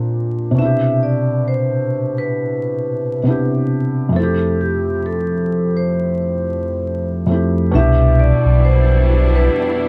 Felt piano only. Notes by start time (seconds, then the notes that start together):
Already playing: A#2 C4 D4 F4 A#4
0.51 B2 C3
0.58 D4 E4
0.65 G4
3.23 C3 B3 D4
3.29 E4 G4
4.09 F2 A3
4.16 C4 E4
4.23 G4
7.26 F2 A3 C4
7.32 E4 G4
7.71 B2 D4
7.76 E4 G4